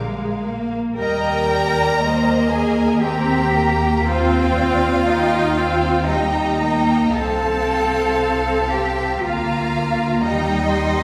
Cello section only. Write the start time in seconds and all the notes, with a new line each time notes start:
0.97 A#4
2.52 G#4
3.02 G4
4.05 F4
6.06 D#4
7.13 A4
8.71 G4
9.20 F4
10.21 D#4